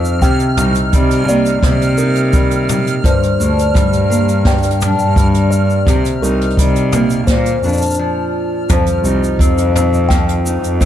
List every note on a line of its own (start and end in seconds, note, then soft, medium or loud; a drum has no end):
0.00 0.13 F2 medium
0.00 0.29 F3 medium
0.00 1.28 C4 medium
0.00 0.57 D#4 medium
0.00 7.99 F6 medium
0.05 shaker soft
0.22 0.34 C3 medium
0.22 1.62 C3 medium
0.22 0.56 G5 medium
0.22 kick loud
0.22 closed hi-hat medium
0.22 shaker medium
0.39 closed hi-hat soft
0.39 shaker soft
0.57 0.69 C2 medium
0.57 1.97 D#4 medium
0.57 mid tom medium
0.57 shaker medium
0.75 closed hi-hat medium
0.75 shaker soft
0.93 1.55 C3 medium
0.93 2.33 G3 medium
0.93 kick medium
0.93 closed hi-hat medium
0.93 shaker soft
1.11 closed hi-hat medium
1.11 shaker soft
1.29 4.10 A#3 medium
1.29 1.62 D5 medium
1.29 shaker medium
1.46 closed hi-hat soft
1.46 shaker soft
1.63 2.95 C3 medium
1.63 3.12 C3 medium
1.63 kick medium
1.63 snare medium
1.63 closed hi-hat medium
1.63 mid tom medium
1.63 shaker medium
1.81 closed hi-hat medium
1.81 shaker soft
1.98 3.11 D#4 medium
1.98 2.32 A#4 medium
1.98 shaker medium
2.15 closed hi-hat soft
2.15 shaker soft
2.33 3.74 G3 medium
2.33 kick loud
2.33 closed hi-hat medium
2.33 shaker medium
2.51 closed hi-hat medium
2.51 shaker soft
2.69 mid tom medium
2.69 shaker medium
2.87 closed hi-hat soft
2.87 shaker soft
3.04 3.17 G2 medium
3.04 4.44 G2 medium
3.04 3.25 C5 medium
3.04 kick loud
3.04 closed hi-hat medium
3.04 shaker medium
3.23 closed hi-hat medium
3.23 shaker soft
3.40 3.52 D2 medium
3.40 4.81 D4 medium
3.40 shaker medium
3.59 closed hi-hat soft
3.59 shaker soft
3.74 4.90 G2 medium
3.74 5.16 G3 medium
3.74 kick loud
3.74 closed hi-hat medium
3.74 mid tom medium
3.74 shaker soft
3.93 closed hi-hat soft
3.93 shaker soft
4.10 6.93 A#3 medium
4.10 shaker medium
4.28 closed hi-hat soft
4.28 shaker soft
4.45 5.94 G2 medium
4.45 4.80 G5 medium
4.45 kick loud
4.45 snare medium
4.45 closed hi-hat soft
4.45 shaker medium
4.58 closed hi-hat soft
4.63 closed hi-hat medium
4.63 shaker soft
4.70 closed hi-hat medium
4.81 5.94 D4 medium
4.81 mid tom medium
4.81 shaker medium
4.99 5.78 G2 medium
4.99 shaker soft
5.16 5.94 G3 medium
5.16 kick medium
5.16 closed hi-hat medium
5.16 shaker medium
5.34 closed hi-hat medium
5.34 shaker soft
5.51 5.85 D5 medium
5.51 shaker medium
5.70 shaker soft
5.87 5.99 C3 medium
5.87 7.35 C3 medium
5.87 kick loud
5.87 closed hi-hat medium
5.87 mid tom medium
5.87 shaker medium
6.05 closed hi-hat medium
6.05 shaker soft
6.22 6.35 C2 medium
6.22 7.36 D#4 medium
6.22 6.56 A#4 medium
6.22 shaker medium
6.41 closed hi-hat soft
6.50 closed hi-hat soft
6.57 7.19 C3 medium
6.57 7.36 G3 medium
6.57 kick medium
6.57 closed hi-hat medium
6.57 closed hi-hat soft
6.57 shaker soft
6.76 closed hi-hat medium
6.76 shaker soft
6.92 7.35 A#3 medium
6.92 mid tom medium
6.92 shaker medium
7.10 closed hi-hat soft
7.10 shaker soft
7.27 7.62 A#2 medium
7.27 8.77 A#2 medium
7.27 7.48 C5 medium
7.27 kick loud
7.27 snare medium
7.27 closed hi-hat medium
7.27 shaker medium
7.46 closed hi-hat medium
7.46 shaker soft
7.63 7.75 F2 medium
7.63 8.77 D4 medium
7.63 shaker soft
7.68 shaker soft
7.73 shaker soft
7.77 shaker medium
7.82 closed hi-hat soft
7.82 shaker medium
7.82 shaker soft
7.86 shaker medium
7.90 shaker medium
7.94 shaker medium
7.99 8.69 F3 medium
8.69 8.82 F2 medium
8.69 10.09 F3 medium
8.69 8.90 C5 medium
8.69 kick loud
8.69 closed hi-hat medium
8.69 mid tom medium
8.69 shaker medium
8.86 closed hi-hat medium
8.86 shaker soft
9.04 9.16 C2 medium
9.04 10.45 D#4 medium
9.04 shaker medium
9.24 shaker soft
9.39 10.54 F2 medium
9.39 9.75 C4 medium
9.39 kick medium
9.39 closed hi-hat medium
9.39 shaker medium
9.58 closed hi-hat medium
9.58 shaker soft
9.75 10.80 C4 medium
9.75 mid tom medium
9.75 shaker medium
9.94 shaker soft
10.09 10.85 F3 medium
10.09 10.43 G5 medium
10.09 kick loud
10.09 snare medium
10.09 closed hi-hat medium
10.09 shaker medium
10.29 closed hi-hat medium
10.29 shaker soft
10.46 10.85 D#4 medium
10.46 shaker medium
10.63 10.85 F2 medium
10.63 closed hi-hat soft
10.63 shaker soft
10.81 10.85 C4 medium
10.81 kick loud
10.81 closed hi-hat medium
10.81 mid tom medium
10.81 shaker medium